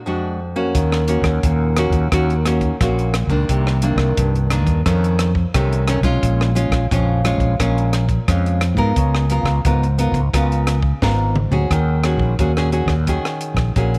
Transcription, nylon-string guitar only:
0.06 0.72 F2 soft
0.06 0.39 G#3 medium
0.06 0.39 D4 medium
0.06 0.39 F#4 medium
0.56 1.03 A#3 medium
0.56 1.03 C#4 medium
0.56 1.03 F#4 medium
0.75 1.40 D#3 medium
1.08 1.72 A#3 medium
1.08 1.72 C#4 medium
1.08 1.72 F#4 medium
1.44 2.09 A#2 medium
1.77 2.06 A#3 medium
1.77 2.07 C#4 medium
1.77 2.07 F#4 medium
2.12 2.77 D#3 medium
2.12 2.33 A#3 medium
2.12 2.33 C#4 medium
2.12 2.33 F#4 medium
2.46 2.75 A#3 medium
2.46 2.75 C#4 soft
2.46 2.75 F#4 medium
2.81 3.46 A#2 medium
2.81 3.13 A#3 medium
2.81 3.13 C#4 soft
2.81 3.13 F#4 medium
3.30 3.77 D#3 medium
3.30 3.77 A#3 medium
3.30 3.77 D4 medium
3.49 4.14 C3 medium
3.82 4.46 D#3 medium
3.82 4.46 A#3 medium
3.82 4.46 D4 medium
4.18 4.83 G2 medium
4.50 4.80 D#3 medium
4.50 4.80 A#3 medium
4.50 4.80 D4 medium
4.86 5.51 F2 medium
4.86 5.30 D#3 medium
4.86 5.30 A3 medium
4.86 5.30 C#4 medium
5.54 6.19 C3 medium
5.54 5.83 D#3 medium
5.54 5.83 A3 medium
5.54 5.84 C#4 medium
5.87 5.98 D#3 medium
5.87 5.98 A3 medium
5.87 5.99 C#4 medium
6.03 6.50 G#3 medium
6.03 6.51 C#4 medium
6.03 6.51 F4 medium
6.23 6.88 A#2 medium
6.55 6.85 G#3 medium
6.55 6.85 C#4 medium
6.55 6.85 F4 medium
6.91 7.56 F2 medium
6.91 7.20 G#3 medium
6.91 7.20 C#4 medium
6.91 7.20 F4 medium
7.24 7.54 G#3 medium
7.24 7.54 C#4 medium
7.24 7.54 F4 medium
7.59 8.25 A#2 medium
7.59 8.04 G#3 medium
7.59 8.04 C#4 medium
7.59 8.04 F4 medium
8.28 8.93 F2 medium
8.28 8.60 G#3 medium
8.28 8.60 C#4 medium
8.28 8.61 F4 medium
8.77 9.24 B3 medium
8.77 9.24 F4 medium
8.77 9.25 A#4 medium
8.97 9.62 C#3 medium
9.31 9.59 B3 medium
9.31 9.60 F4 medium
9.31 9.60 A#4 medium
9.66 10.30 G#2 soft
9.66 9.85 B3 soft
9.66 9.86 F4 medium
9.66 9.86 A#4 medium
9.98 10.19 B3 medium
9.98 10.19 F4 medium
9.98 10.19 A#4 medium
10.34 10.99 C#3 soft
10.34 10.78 B3 medium
10.34 10.78 F4 medium
10.34 10.78 A#4 medium
11.02 11.67 G#2 medium
11.02 11.34 B3 medium
11.02 11.34 F4 soft
11.02 11.34 A#4 medium
11.52 11.98 C#4 medium
11.52 11.98 F#4 medium
11.52 11.99 G#4 medium
11.71 12.36 D#3 medium
12.04 12.33 C#4 soft
12.04 12.33 F#4 medium
12.04 12.33 G#4 medium
12.39 13.04 A#2 soft
12.39 12.51 C#4 soft
12.39 12.51 F#4 soft
12.39 12.51 G#4 medium
12.57 12.68 C#4 medium
12.57 12.68 F#4 medium
12.57 12.68 G#4 medium
12.72 12.93 C#4 soft
12.72 12.93 F#4 medium
12.72 12.93 G#4 medium
13.08 13.73 D#3 medium
13.08 13.71 C#4 medium
13.08 13.71 F#4 soft
13.08 13.71 G#4 medium
13.76 13.98 A#2 medium
13.76 13.98 C#4 medium
13.76 13.98 F#4 soft
13.76 13.98 G#4 medium

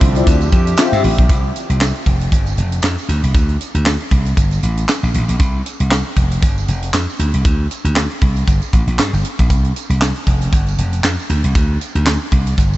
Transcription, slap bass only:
0.01 0.22 C2 loud
0.27 0.48 D2 loud
0.53 0.74 F2 loud
0.92 1.02 G2 loud
1.04 1.16 A1 medium
1.18 1.28 A#1 medium
1.29 1.51 C2 medium
1.70 1.91 C2 medium
2.06 2.28 F1 medium
2.32 2.53 G1 medium
2.58 2.79 F1 medium
2.83 2.95 F2 medium
3.09 3.21 D2 medium
3.23 3.33 C2 medium
3.35 3.56 D2 loud
3.75 3.96 D2 medium
4.12 4.33 C2 medium
4.37 4.58 G1 loud
4.63 4.84 A1 medium
5.03 5.12 A#1 medium
5.14 5.26 A1 medium
5.29 5.38 A#1 medium
5.40 5.61 C2 loud
5.80 6.01 C2 loud
6.17 6.38 F1 loud
6.42 6.64 G1 medium
6.68 6.89 F1 loud
6.94 7.06 F2 medium
7.19 7.31 D2 medium
7.34 7.43 C2 medium
7.45 7.66 D2 loud
7.85 8.06 D2 medium
8.22 8.43 C2 medium
8.48 8.59 G1 medium
8.73 8.85 A1 medium
8.87 8.97 A#1 medium
8.98 9.10 G2 loud
9.13 9.22 G1 medium
9.39 9.50 A#1 medium
9.50 9.71 C2 loud
9.90 10.11 C2 medium
10.27 10.48 F1 medium
10.53 10.74 G1 medium
10.78 10.99 F1 medium
11.04 11.16 F2 loud
11.30 11.41 D2 medium
11.44 11.53 C2 medium
11.55 11.76 D2 loud
11.95 12.16 D2 medium
12.32 12.53 C2 medium
12.58 12.77 G1 medium

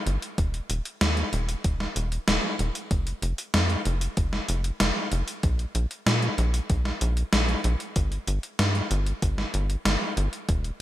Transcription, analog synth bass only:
0.06 0.18 G1 medium
0.38 0.61 D#1 loud
0.69 0.81 D#1 medium
1.01 1.24 D#2 medium
1.33 1.55 D#1 loud
1.65 1.87 D#1 medium
1.96 2.18 D#1 loud
2.28 2.39 D#1 medium
2.59 2.70 D#1 medium
2.91 3.13 F1 loud
3.22 3.34 F1 medium
3.54 3.76 F2 medium
3.86 4.08 F1 loud
4.17 4.40 F1 medium
4.49 4.71 F1 loud
4.80 4.92 F1 medium
5.12 5.23 F1 medium
5.44 5.66 A#1 loud
5.75 5.86 A#1 medium
6.06 6.29 A#2 medium
6.38 6.61 A#1 loud
6.70 6.92 A#1 medium
7.01 7.24 A#1 loud
7.33 7.55 A#1 medium
7.64 7.76 A#1 loud
7.96 8.18 G1 loud
8.27 8.39 G1 medium
8.59 8.82 G2 medium
8.91 9.13 G1 loud
9.22 9.45 G1 medium
9.54 9.76 G1 loud
9.85 9.97 G1 medium
10.17 10.28 G1 medium
10.49 10.71 D#1 medium

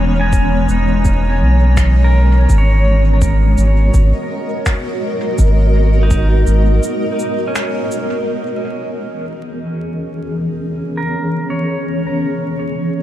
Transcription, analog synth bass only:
0.00 0.66 E1 loud
0.69 1.43 E1 loud
1.41 2.47 B1 medium
2.50 3.55 G#1 loud
3.58 3.90 G#1 medium
3.94 4.13 G#1 medium
5.39 6.44 G#1 loud
6.47 6.80 G#1 medium

